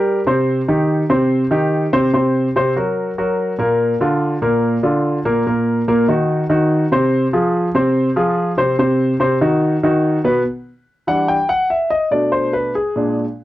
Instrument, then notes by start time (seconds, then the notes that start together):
grand piano
Already playing: G3 G4 A#4
0.27 C3 C4 C5
0.68 D#3 D#4 G4
1.10 C3 C4 C5
1.51 D#3 D#4 G4
1.93 C3 C4 C5
2.13 C3 C4 C5
2.56 C3 C4 C5
2.76 F#3 F#4 A#4
3.18 F#3 F#4 A#4
3.58 A#2 A#3 A#4
4.01 D3 D4 F4
4.42 A#2 A#3 A#4
4.83 D3 D4 F4
5.25 A#2 A#3 A#4
5.46 A#2 A#3 A#4
5.88 A#2 A#3 A#4
6.08 D#3 D#4 F#4
6.49 D#3 D#4 F#4
6.92 C3 C4 C5
7.33 F3 F4 G#4
7.75 C3 C4 C5
8.16 F3 F4 G#4
8.57 C3 C4 C5
8.79 C3 C4 C5
9.20 C3 C4 C5
9.41 D#3 D#4 F#4
9.83 D#3 D#4 F#4
10.24 B2 B3 B4
11.07 E3 G3 D4 F#5
11.28 G5
11.49 F#5
11.70 E5
11.90 D#5
12.11 B2 A3 D4 D5
12.32 C5
12.53 B4
12.75 G#4
12.96 A#2 G#3 D4